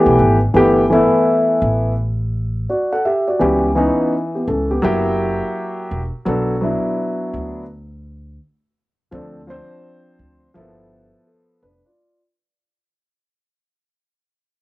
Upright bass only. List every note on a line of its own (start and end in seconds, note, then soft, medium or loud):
0.06 0.16 B1 medium
0.19 0.47 G#1 medium
0.54 1.01 G1 medium
1.62 2.65 A1 medium
3.41 3.87 C#2 medium
4.48 4.76 C#2 medium
4.83 5.40 F#1 medium
5.91 6.09 E1 medium
6.26 6.72 B1 loud
7.34 8.37 D2 medium
9.12 9.58 D2 loud
10.19 10.47 D2 medium
10.55 11.11 G1 medium
11.63 11.80 F1 medium